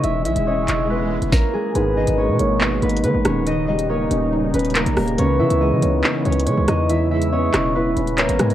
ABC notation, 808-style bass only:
X:1
M:4/4
L:1/16
Q:1/4=140
K:G#m
V:1 name="808-style bass" clef=bass
E,,,2 B,,, E,,,3 E,,,4- E,,, E,,, z4 | G,,,3 G,,,2 B,, G,,,4 G,,,2 D, G,,, D,,,2- | D,,,6 D,,,4 D,,,3 A,,, D,,,2 | C,,2 C, C,,2 C, C,,2 z2 C,,2 C, C,, E,,2- |
E,,6 E,,,4 D,,,3 G,,, G,,2 |]